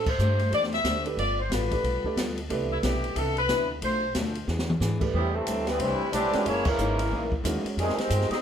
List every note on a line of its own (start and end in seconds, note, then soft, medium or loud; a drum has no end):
0.00 0.18 A2 medium
0.06 0.53 C5 medium
0.06 kick medium
0.06 crash medium
0.19 0.51 G2 medium
0.19 0.41 A3 medium
0.19 0.41 D4 medium
0.19 0.41 G4 medium
0.19 0.42 C5 medium
0.19 hi-hat pedal medium
0.39 ride soft
0.50 0.83 E2 medium
0.50 0.73 A3 soft
0.50 0.73 D4 soft
0.50 0.74 G4 medium
0.50 0.74 C5 soft
0.50 0.63 D5 loud
0.50 ride medium
0.63 snare soft
0.72 1.04 E5 loud
0.72 snare soft
0.72 ride soft
0.84 1.16 D2 medium
0.84 1.07 A3 medium
0.84 1.07 D4 medium
0.84 1.07 G4 medium
0.84 1.07 C5 medium
0.84 snare medium
0.84 hi-hat pedal medium
0.84 ride medium
1.05 1.17 A3 medium
1.05 1.17 D4 medium
1.05 1.17 G4 soft
1.05 1.18 B4 medium
1.05 ride soft
1.17 1.49 G1 medium
1.17 1.39 G3 soft
1.17 1.40 B3 soft
1.17 1.40 F4 soft
1.17 1.40 A4 soft
1.17 1.38 D5 medium
1.17 ride medium
1.39 1.51 C5 medium
1.50 1.82 A1 medium
1.50 1.73 G3 medium
1.50 1.73 B3 medium
1.50 1.74 F4 medium
1.50 1.74 A4 medium
1.50 2.34 B4 medium
1.50 snare medium
1.50 hi-hat pedal medium
1.50 ride medium
1.71 1.83 A3 medium
1.71 1.83 D4 medium
1.71 1.83 G4 soft
1.71 1.84 B4 medium
1.71 kick medium
1.71 ride soft
1.83 2.03 B1 medium
1.83 2.06 G3 soft
1.83 2.06 B3 soft
1.83 2.06 F4 soft
1.83 2.07 A4 medium
1.83 ride soft
2.04 2.16 A3 medium
2.04 2.16 D4 medium
2.04 2.17 G4 medium
2.04 2.17 D5 medium
2.04 muted upright bass stroke soft
2.04 kick soft
2.16 2.49 D2 medium
2.16 2.39 G3 medium
2.16 2.39 B3 medium
2.16 2.39 F4 medium
2.16 2.39 A4 medium
2.16 snare medium
2.16 hi-hat pedal soft
2.16 ride medium
2.37 ride soft
2.50 2.82 C2 medium
2.50 2.72 C3 soft
2.50 2.72 E3 medium
2.50 3.41 A3 medium
2.50 2.72 B3 medium
2.50 3.41 D4 medium
2.50 2.73 D4 medium
2.50 3.42 G4 medium
2.50 3.42 B4 medium
2.50 ride medium
2.72 2.77 E4 medium
2.83 3.15 B1 medium
2.83 3.04 C3 medium
2.83 3.05 E3 medium
2.83 3.05 B3 medium
2.83 3.05 D4 medium
2.83 3.14 G4 medium
2.83 snare medium
2.83 hi-hat pedal soft
2.83 ride medium
3.04 ride soft
3.15 3.48 C2 medium
3.15 3.37 C3 soft
3.15 3.38 E3 soft
3.15 3.38 B3 soft
3.15 3.38 D4 medium
3.15 3.37 A4 loud
3.15 ride medium
3.37 3.68 B4 loud
3.37 ride soft
3.48 3.81 D2 medium
3.48 3.70 C3 medium
3.48 3.70 E3 medium
3.48 3.70 B3 medium
3.48 3.71 D4 medium
3.48 snare medium
3.48 hi-hat pedal medium
3.48 ride medium
3.82 4.14 B1 medium
3.82 4.03 B2 soft
3.82 4.04 F3 soft
3.82 4.04 A3 medium
3.82 4.04 D4 soft
3.82 4.13 C5 loud
3.82 ride medium
4.15 4.47 D2 medium
4.15 4.37 B2 medium
4.15 4.37 F3 medium
4.15 4.37 A3 medium
4.15 4.37 D4 medium
4.15 snare medium
4.15 hi-hat pedal medium
4.15 ride medium
4.35 ride soft
4.47 4.80 E2 medium
4.47 4.69 E3 soft
4.47 4.70 B3 medium
4.47 4.70 D4 medium
4.47 4.70 G#4 medium
4.47 snare soft
4.59 snare medium
4.70 mid tom medium
4.80 5.12 G#2 medium
4.80 5.02 E3 medium
4.80 5.03 B3 medium
4.80 5.03 D4 medium
4.80 5.03 G#4 medium
4.80 snare medium
4.80 hi-hat pedal medium
5.00 5.12 A3 medium
5.00 5.12 D4 soft
5.00 5.13 G4 medium
5.00 5.13 B4 medium
5.00 kick medium
5.00 crash medium
5.14 5.46 E2 medium
5.14 5.35 A2 soft
5.14 5.33 C3 medium
5.14 5.33 E3 medium
5.14 5.33 G3 medium
5.14 5.36 G3 soft
5.14 5.33 B3 medium
5.14 5.33 C4 medium
5.14 5.36 C4 soft
5.14 5.36 D4 medium
5.14 5.33 G4 medium
5.34 5.67 C3 medium
5.34 5.66 E3 medium
5.34 5.68 G3 medium
5.34 5.67 A3 medium
5.34 5.67 C4 medium
5.34 5.68 E4 medium
5.34 5.68 A4 medium
5.47 5.79 D2 medium
5.47 5.68 A2 medium
5.47 5.69 G3 medium
5.47 5.69 C4 medium
5.47 5.69 D4 medium
5.47 hi-hat pedal medium
5.47 ride medium
5.67 5.79 E3 medium
5.67 5.79 G3 medium
5.67 5.81 G3 medium
5.67 5.80 B3 medium
5.67 5.80 C4 medium
5.67 5.81 E4 medium
5.67 5.81 B4 medium
5.67 snare soft
5.67 ride soft
5.79 5.98 C2 medium
5.79 6.01 A2 soft
5.79 6.12 E3 medium
5.79 6.01 G3 soft
5.79 6.12 G3 medium
5.79 6.14 G3 medium
5.79 6.13 C4 medium
5.79 6.02 C4 medium
5.79 6.02 D4 medium
5.79 6.14 E4 medium
5.79 6.14 B4 medium
5.79 6.14 C5 medium
5.79 ride medium
6.00 muted upright bass stroke soft
6.12 6.31 B1 medium
6.12 6.34 A2 medium
6.12 6.43 E3 medium
6.12 6.44 G3 medium
6.12 6.35 G3 medium
6.12 6.35 C4 medium
6.12 6.44 C4 medium
6.12 6.44 D4 medium
6.12 6.35 D4 medium
6.12 6.44 G4 medium
6.12 6.44 B4 medium
6.12 6.44 D5 loud
6.12 hi-hat pedal medium
6.12 ride medium
6.33 6.44 G#3 medium
6.33 6.44 C#4 medium
6.33 6.45 F#4 medium
6.33 6.45 A#4 medium
6.33 muted upright bass stroke soft
6.33 snare soft
6.33 ride soft
6.45 6.78 F#1 medium
6.45 6.67 F#2 soft
6.45 6.67 E3 soft
6.45 6.66 E3 medium
6.45 6.66 A#3 loud
6.45 6.68 A#3 soft
6.45 6.67 A#3 medium
6.45 6.66 C#4 medium
6.45 6.68 D#4 medium
6.45 6.67 E4 medium
6.45 6.67 G#4 medium
6.45 6.67 C#5 loud
6.45 ride medium
6.65 7.33 C#3 medium
6.65 7.32 E3 medium
6.65 7.33 G#3 medium
6.65 7.33 A#3 medium
6.65 7.33 C#4 medium
6.65 7.33 E4 medium
6.65 7.33 A#4 medium
6.65 kick medium
6.65 crash medium
6.78 7.10 G#1 medium
6.78 7.00 F#2 medium
6.78 7.00 E3 medium
6.78 7.00 A#3 medium
6.78 7.00 D#4 medium
6.78 hi-hat pedal medium
6.99 ride medium
7.10 7.43 A#1 medium
7.10 7.32 F#2 medium
7.10 7.33 E3 medium
7.10 7.33 A#3 medium
7.10 7.33 D#4 medium
7.32 kick medium
7.43 7.63 D#2 medium
7.43 7.65 F#2 medium
7.43 7.66 E3 medium
7.43 7.77 G#3 medium
7.43 7.66 A#3 medium
7.43 7.78 C#4 medium
7.43 7.66 D#4 medium
7.43 7.78 F#4 medium
7.43 7.78 A#4 medium
7.43 hi-hat pedal soft
7.43 ride medium
7.64 muted upright bass stroke soft
7.64 ride medium
7.77 7.96 F2 medium
7.77 7.97 C3 medium
7.77 7.97 D#3 medium
7.77 7.99 F3 soft
7.77 7.97 G3 medium
7.77 7.99 G#3 soft
7.77 7.97 G#3 medium
7.77 7.97 C4 medium
7.77 7.99 D#4 soft
7.77 8.00 G4 medium
7.77 7.97 G#4 medium
7.77 ride medium
7.89 snare soft
7.97 8.31 D#3 medium
7.97 8.30 G#3 medium
7.97 8.31 G#3 medium
7.97 8.30 C4 medium
7.97 8.31 D#4 medium
7.97 8.30 G4 medium
7.97 8.31 C5 medium
7.97 muted upright bass stroke soft
7.97 snare soft
7.97 ride medium
8.10 8.29 G2 medium
8.10 8.32 F3 medium
8.10 8.32 G#3 medium
8.10 8.33 D#4 medium
8.10 8.33 G4 medium
8.10 hi-hat pedal medium
8.10 ride medium
8.21 snare soft
8.30 8.36 G#3 medium
8.30 8.36 C4 medium
8.30 8.37 C4 medium
8.30 8.36 D#4 medium
8.30 8.36 G4 medium
8.30 8.37 G#4 medium
8.30 8.37 D#5 medium
8.30 muted upright bass stroke soft
8.30 snare soft
8.30 ride soft